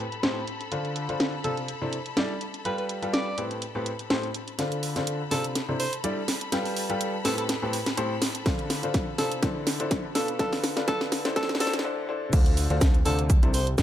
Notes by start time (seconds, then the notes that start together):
Already playing: A4 B5
0.12 closed hi-hat
0.23 A2 C4 G4 A4 C5, snare, closed hi-hat
0.47 closed hi-hat
0.61 closed hi-hat
0.72 D3 D4 F4 A4 C5, closed hi-hat
0.85 closed hi-hat
0.96 closed hi-hat
1.09 D3 D4 F4 A4 C5, closed hi-hat
1.20 snare, closed hi-hat
1.44 C3 D4 F4 A4 C5, closed hi-hat
1.57 closed hi-hat
1.68 closed hi-hat
1.82 C3 D4 E4 A4 C5
1.93 closed hi-hat
2.06 closed hi-hat
2.17 G3 D4 E4 A4 D5, snare, closed hi-hat
2.41 closed hi-hat
2.54 closed hi-hat
2.65 G3 F4 G4 A4 B4, closed hi-hat
2.78 B4, closed hi-hat
2.89 closed hi-hat
3.02 G3 F4 G4 A4 B4, closed hi-hat
3.14 D5, snare, closed hi-hat
3.38 A2 C4 G4 A4 B4, closed hi-hat
3.51 closed hi-hat
3.62 closed hi-hat
3.75 A2 C4 G4 A4 B4
3.86 closed hi-hat
3.99 closed hi-hat
4.10 A2 C4 G4 A4 C5, snare, closed hi-hat
4.23 closed hi-hat
4.34 closed hi-hat
4.48 closed hi-hat
4.59 D3 D4 F4 A4 C5 B5, snare, closed hi-hat
4.72 closed hi-hat
4.83 open hi-hat
4.96 D3 D4 F4 A4 C5, snare, closed hi-hat
5.07 closed hi-hat
5.31 C3 D4 F4 A4 C5, snare, open hi-hat
5.44 closed hi-hat
5.55 snare, closed hi-hat
5.69 C3 D4 E4 A4 C5
5.80 C5, open hi-hat
5.93 closed hi-hat
6.04 G3 D4 E4 A4 D5, closed hi-hat
6.28 snare, open hi-hat
6.41 closed hi-hat
6.52 G3 F4 G4 A4 B4, snare, closed hi-hat
6.65 open hi-hat
6.76 open hi-hat
6.90 G3 F4 G4 A4 B4, closed hi-hat
7.01 closed hi-hat
7.25 A2 C4 G4 A4 B4, snare, open hi-hat
7.38 A4, closed hi-hat
7.49 snare, closed hi-hat
7.62 A2 C4 G4 A4 B4
7.73 open hi-hat
7.86 snare, closed hi-hat
7.97 A2 C4 G4 A4 C5, closed hi-hat
8.22 snare, open hi-hat
8.35 closed hi-hat
8.46 D3 D4 F4 A4 C5, kick, snare, closed hi-hat
8.59 closed hi-hat
8.70 snare, open hi-hat
8.83 D3 D4 F4 A4 C5, closed hi-hat
8.94 kick, snare, closed hi-hat
9.18 C3 D4 F4 A4 C5, snare, open hi-hat
9.32 closed hi-hat
9.43 D3 D4 E4 A4 C5, kick, snare, closed hi-hat
9.67 snare, open hi-hat
9.80 D3 D4 E4 A4 C5, closed hi-hat
9.91 kick, snare, closed hi-hat
10.15 B2 D4 F4 A4 B4, snare, open hi-hat
10.28 closed hi-hat
10.39 D3 D4 F4 A4 B4, kick, snare, closed hi-hat
10.53 snare, open hi-hat
10.64 snare, open hi-hat
10.77 D3 D4 F4 A4 B4, snare, closed hi-hat
10.88 F4 A4, kick, snare, closed hi-hat
11.01 snare
11.12 snare, open hi-hat
11.25 D3 D4 E4 A4 C5, snare, closed hi-hat
11.36 D4 A4 C5, kick, snare, closed hi-hat
11.43 snare
11.49 snare
11.55 snare
11.60 D3 D4 E4 A4 C5, snare, open hi-hat
11.67 snare
11.73 snare, closed hi-hat
11.79 snare
11.85 D3 D4 E4 A4 C5
12.09 D3 D4 E4 A4 C5
12.33 D2 D3 D4 F4 A4 C5, kick, closed hi-hat, crash, shaker
12.46 closed hi-hat
12.57 open hi-hat, shaker
12.70 D2 D3 D4 F4 A4 C5, closed hi-hat
12.81 kick, snare, closed hi-hat, shaker
12.94 closed hi-hat
13.05 D2 C3 D4 F4 A4 C5, open hi-hat, shaker
13.19 closed hi-hat
13.30 kick, closed hi-hat, shaker
13.43 C2 C3 D4 E4 A4 C5, closed hi-hat
13.54 C5, open hi-hat, shaker
13.67 closed hi-hat
13.78 G3 D4 E4 A4 D5, kick, snare, closed hi-hat, shaker